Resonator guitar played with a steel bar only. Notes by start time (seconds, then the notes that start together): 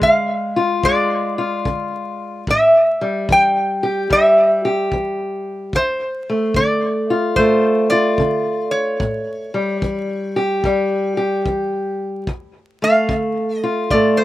0.03 F5
0.85 D5
2.50 E5
3.32 G5
4.13 E5
5.76 C5
6.56 D5
7.36 C5
7.90 D5
8.71 C#5
12.84 F5
13.57 D#5
13.91 D5
14.17 C5